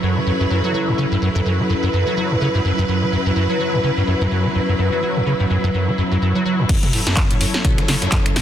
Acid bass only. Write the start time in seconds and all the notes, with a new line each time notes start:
0.03 F#2
0.16 F#3
0.26 F#2
0.40 F#2
0.50 F#2
0.64 F#3
0.74 F#3
0.87 F#2
0.98 C#3
1.11 G2
1.22 F#2
1.35 F#2
1.46 F#2
1.59 F#3
1.69 F#2
1.83 F#2
1.93 F#2
2.07 F#3
2.17 F#3
2.31 F#2
2.41 C#3
2.55 G2
2.65 F#2
2.78 F#2
2.88 F#2
3.02 F#3
3.12 F#2
3.26 F#2
3.36 F#2
3.50 F#3
3.60 F#3
3.73 F#2
3.84 C#3
3.97 G2
4.07 F#2
4.21 F#2
4.31 F#2
4.45 F#3
4.55 F#2
4.69 F#2
4.79 F#2
4.92 F#3
5.03 F#3
5.16 F#2
5.26 C#3
5.40 G2
5.50 F#2
5.64 F#2
5.74 F#2
5.88 F#3
5.98 F#2
6.11 F#2
6.22 F#2
6.35 F#3
6.45 F#3
6.59 F#2
6.69 F#2
6.83 F#2
6.93 A2
7.07 F#2
7.31 A2
7.41 F#2
7.54 F#3
7.64 B2
7.78 F#3
7.88 C#3
8.02 F#2
8.12 F#2
8.26 F#2
8.36 A2